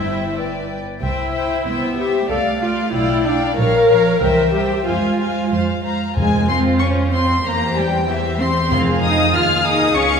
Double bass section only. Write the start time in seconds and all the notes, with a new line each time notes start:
Already playing: G1
1.01 C2
1.66 C2
2.30 C2
2.93 B1
3.58 A#1
4.22 C2
4.86 F2
5.52 F2
6.16 F2
7.45 E2
8.71 F2
9.34 D#2
9.96 C#2